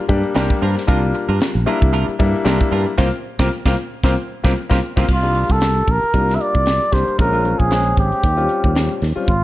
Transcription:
0.09 G2 G3 A#3 D4 G4, muted clean electric guitar stroke, kick, closed hi-hat
0.23 closed hi-hat
0.35 C2 G3 A#3 D4 F4 G4 A#4 G5, snare, closed hi-hat
0.50 muted clean electric guitar stroke, kick
0.62 G2 G3 D4 F4 A#4 C5, open hi-hat
0.77 muted clean electric guitar stroke, snare
0.87 C2 G3 A#3 D4 F4 A#4, kick, closed hi-hat
1.03 muted clean electric guitar stroke, closed hi-hat
1.14 muted clean electric guitar stroke, closed hi-hat
1.29 G2 D4 F4 A#4
1.40 muted clean electric guitar stroke, snare, closed hi-hat
1.55 A#1
1.66 G3 A#3 D4 E4 F4 A#4, closed hi-hat
1.81 C2, muted clean electric guitar stroke, kick, closed hi-hat
1.93 G3 D4 F4 A#4, closed hi-hat
2.08 muted clean electric guitar stroke, closed hi-hat
2.19 G2 G3 A#3 D4 E4, muted clean electric guitar stroke, kick, closed hi-hat
2.35 closed hi-hat
2.45 C2 G3 A#3 D4 E4 F4 A#4, snare, closed hi-hat
2.60 muted clean electric guitar stroke, kick
2.71 G2 G3 D4 F4 A#4, open hi-hat
2.86 muted clean electric guitar stroke, closed hi-hat
2.98 C2 A#3 C4 F4 G4, kick, snare
3.39 C2 A#3 C4 F4 G4, kick, snare
3.65 C2 A#3 C4 F4 G4, kick, snare
4.03 C2 A#3 C4 F4 G4, kick, snare
4.43 C2 A#3 C4 F4 G4, kick, snare
4.70 C2 A#3 C4 F4 G4, kick, snare
4.96 C2 A#3 C4 F4 G4, kick, snare
5.08 C2, kick, crash
5.13 F4
5.23 G3 A#3 D4 F4, closed hi-hat
5.35 closed hi-hat
5.49 C2 A4, kick
5.61 snare, closed hi-hat
5.88 A#1 A#4, kick, closed hi-hat
6.02 muted fretless electric bass stroke, closed hi-hat
6.14 C2 G3 A#3 D4 F4, kick, closed hi-hat
6.29 snare, closed hi-hat
6.35 E5
6.41 D5, closed hi-hat
6.55 C2, kick, closed hi-hat
6.66 snare, closed hi-hat
6.81 closed hi-hat
6.92 C2 G3 A#3 D4 G4 C5, kick, snare, closed hi-hat
7.08 muted fretless electric bass stroke, closed hi-hat
7.18 A#1 G#3 C4 C#4 F4 A#4, kick, closed hi-hat
7.32 G#3 C4 C#4 F4, closed hi-hat
7.44 G#3 C4 C#4 F4, closed hi-hat
7.59 A#1 G#4, kick
7.71 G#3 C4 C#4 G#4, snare, closed hi-hat
7.97 G#1 G4, kick, closed hi-hat
8.12 muted fretless electric bass stroke, closed hi-hat
8.24 D#2, kick, closed hi-hat
8.37 G3 C4 C#4 F4, closed hi-hat
8.49 closed hi-hat
8.64 D#2, kick
8.75 snare, closed hi-hat
8.90 closed hi-hat
9.02 D#2, snare, open hi-hat
9.16 G3 C4 C#4 F4, muted fretless electric bass stroke
9.28 G#1 F4, kick, closed hi-hat

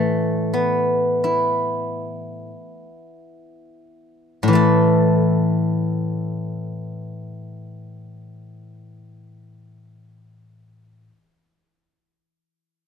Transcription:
Already playing: A2 E3 A3 A4 B4
0.54 B3
1.24 E4
4.43 A2
4.48 E3
4.53 A3 A4

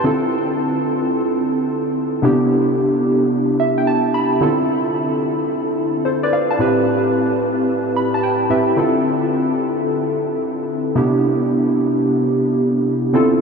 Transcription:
0.04 D3 C4 E4 F4 A4
2.22 C3 B3 D4 E4 G4
3.60 E5
3.78 G5
3.87 A5
4.14 B5
4.41 D3 C4 E4 F4 A4
6.05 A4 C5
6.23 B4 D5
6.33 D5 F5
6.51 F5 A5
6.59 A2 C4 E4 G4 B4
7.96 B5
8.14 A5
8.23 G5
8.50 A2 C4 E4 G4 B4 E5
8.77 D3 C4 E4 F4 A4
10.95 C3 B3 D4 E4 G4
13.13 D3 C4 E4 F4 A4

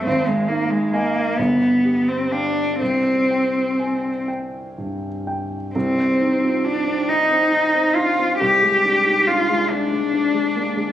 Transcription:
0.05 G#1 C4
0.27 G#3
0.48 A#3 D#4
0.71 G#3
0.94 A#3 D#5 G#5
1.37 G1 B3
1.85 G4
2.08 C4
2.32 D4 F5 G5
2.81 C2 C4
3.31 G5
3.79 G#5
4.28 G5
4.78 G2
5.27 G5
5.75 C2 C4
5.98 C4
6.21 D#4
6.43 F4
6.65 D4 D#4
6.88 C4
7.09 D#4
7.31 C4
7.75 C4
7.95 D4 F4
8.19 C4
8.40 C2 G4
8.62 G#3
8.85 D4
9.06 D#4
9.27 D4 F4
9.49 G#3
9.70 D4
9.92 G#3
10.13 D4
10.34 G#3
10.56 A#3
10.77 G#3

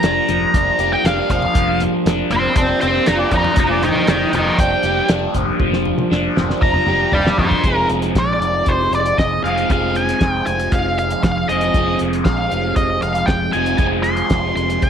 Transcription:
Already playing: F3 G3 A#3 D4 F4 A#4 A#5
0.03 F1 D4, snare, closed hi-hat
0.29 F1 F3, closed hi-hat, high conga, low conga
0.54 F1 D4, kick, snare, closed hi-hat
0.79 F1 G4, closed hi-hat
0.93 G5
1.04 F1 D4 F5, snare, closed hi-hat
1.30 F1 F3 F5, kick, closed hi-hat, low conga
1.42 high conga
1.55 F1 F3, kick, closed hi-hat
1.80 closed hi-hat, low conga
2.06 F1 D4, snare, closed hi-hat
2.30 F1 F3 G5 C6, closed hi-hat, high conga, low conga
2.56 F1 D4 G5 C6, kick, closed hi-hat
2.81 F1 G4 G5 C6, closed hi-hat
3.06 F1 D4 D5 A#5, snare, closed hi-hat
3.31 F2 F3 D5 A#5, kick, closed hi-hat, low conga
3.44 high conga
3.56 F1 F3 C5 D5 A#5, kick, closed hi-hat
3.81 A#4 G5, closed hi-hat, low conga
3.95 high conga
4.07 F1 D4 A#4 G5, snare, closed hi-hat
4.33 F1 F3 A#4 G5, closed hi-hat, high conga, low conga
4.58 F1 D4 G5, kick, snare, closed hi-hat
4.83 F1 G4, closed hi-hat
5.08 F1 D4, snare, closed hi-hat
5.34 F1 F3, kick, closed hi-hat, low conga
5.59 F1 F3, kick, low conga
5.73 snare
5.85 low conga
5.98 high tom, high conga
6.11 F1 D4, snare
6.37 F1 F3, snare, low conga
6.50 snare
6.62 F1 D4 A#5, kick
6.74 mid tom
6.87 F1 G4, mid tom
7.12 F1 D4 D5 G5, floor tom
7.26 snare, high conga
7.38 F2 F3 C5 D#5, kick, low conga
7.51 kick, high conga
7.64 F1 F2 C3 F3 G#3 C4 D#4 G#4, kick, closed hi-hat
7.89 F1, closed hi-hat
8.02 closed hi-hat
8.15 A#1 D5, kick, snare, closed hi-hat
8.40 F1, closed hi-hat
8.66 F1 C5, kick, closed hi-hat
8.91 F1 D5, closed hi-hat
9.06 closed hi-hat
9.18 F1 D#5, kick, snare, closed hi-hat
9.43 F1 F2 C3 F3 G#3 C4 G#4 F5, closed hi-hat
9.58 closed hi-hat
9.70 F1 F2 C3 F3 G#3 C4 G#4 F5, kick, closed hi-hat
9.95 G#5, closed hi-hat
10.09 closed hi-hat
10.21 F1, kick, snare, closed hi-hat
10.31 G5
10.46 F1 G#5, closed hi-hat
10.60 closed hi-hat
10.72 F1 F5, kick, closed hi-hat
10.98 F5, closed hi-hat
11.10 closed hi-hat
11.23 F1 F5, kick, snare, closed hi-hat
11.48 F1 F2 C3 F3 G#3 C4 G#4 D#5, closed hi-hat
11.61 closed hi-hat
11.74 F1 F2 C3 F3 G#3 C4 F4 G#4, kick, closed hi-hat
11.99 F1, closed hi-hat
12.13 closed hi-hat
12.25 A#1 F5, kick, snare, closed hi-hat
12.51 F1, closed hi-hat
12.76 F1 D#5, kick, closed hi-hat
13.02 F1 F5, closed hi-hat
13.15 closed hi-hat
13.26 F1 G5, kick, snare, closed hi-hat
13.53 F1 F2 C3 F3 G#3 C4 G#4 G#5, closed hi-hat
13.66 closed hi-hat
13.78 F1 F2 C3 F3 G#3 C4 G#4 G#5, kick, closed hi-hat
14.03 C6, closed hi-hat
14.17 closed hi-hat
14.30 F1, kick, snare, closed hi-hat
14.56 F1 C6, closed hi-hat
14.70 closed hi-hat
14.82 F1 G#5, kick, closed hi-hat

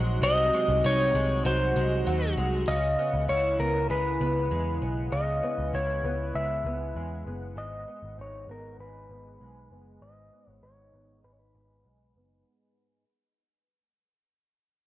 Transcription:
Already playing: A#1 C3 F#3 G#3 D#4
0.22 C2 C3 D#5
0.53 G#3
0.68 C2
0.84 C2 D#4 C#5
1.15 C2 G#3
1.45 C2 F#3 C5
1.76 C2 G#3
2.07 D#2 F#3
2.37 C2 G#3
2.68 C#2 C#3 D#5
2.99 B3
3.14 C#2
3.29 C#2 E4 C#5
3.59 C#2 B3 A#4
3.90 C#2 G#3 B4
4.21 C#2 B3
4.51 E2 G#3
4.82 B1 B3
5.12 C#2 C#3 D#5
5.43 B3
5.58 C#2
5.74 C#2 E4 C#5
6.04 C#2 B3
6.35 C#2 G#3 E5
6.65 C#2 B3
6.95 E2 G#3
7.26 F#1 B3
7.56 G#1 G#2 D#5
7.88 B3
8.02 G#1
8.18 G#1 D#4 C#5
8.48 G#1 B3 A#4
8.79 G#1 G#3 B4
9.09 G#1 B3
9.41 B1 G#3
9.71 F#1 B3
10.01 G#1 G#2 D#5
10.32 B3
10.48 G#1 C#5
10.62 G#1 D#4 C#5
10.93 G#1 B3
11.24 G#1 G#3 B4
11.33 C#5
11.39 B4
11.55 G#1 B3
11.85 B1 G#3
12.16 F#1 B3

